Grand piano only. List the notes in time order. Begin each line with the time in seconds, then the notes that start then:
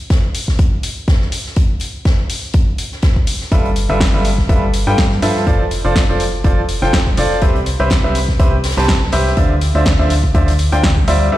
3.52 G3 F4 A4 B4 E5
3.89 G3 F4 A4 B4 E5
4.14 G3 F4 A4 B4 E5
4.49 G3 F4 A4 B4 E5
4.87 G3 F4 A4 B4 G5
5.22 F3 F4 A4 B4 E5
5.47 F3 F4 A4 C5 D5
5.85 F3 F4 A4 C5 D5
6.09 F3 F4 A4 C5 D5
6.44 F3 F4 A4 C5 D5
6.82 F3 F4 A4 C5 G5
7.18 F4 A4 C5 D5
7.42 C4 G4 B4 C5 E5
7.80 C4 G4 B4 C5 E5
8.04 C4 G4 B4 C5 E5
8.39 C4 G4 B4 C5 E5
8.77 C4 G4 B4 C5 A5
9.13 G4 B4 C5 E5
9.37 D3 F4 C5 D5 E5
9.75 D3 F4 C5 D5 E5
9.99 D3 F4 C5 D5 E5
10.35 D3 F4 C5 D5 E5
10.72 D3 F4 C5 D5 G5
11.08 G3 F4 C5 D5 E5
11.32 G3 F4 G4 A4 B4 E5